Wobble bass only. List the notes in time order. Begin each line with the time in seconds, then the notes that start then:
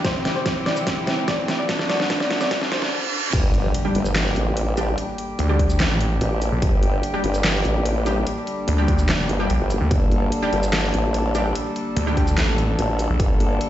3.33 G1
3.95 G1
4.36 A1
6.21 A1
6.62 G1
7.24 G1
7.65 A1
9.29 G1
9.60 G1
9.91 G1
10.53 G1
10.94 A1
12.79 A1
13.20 G1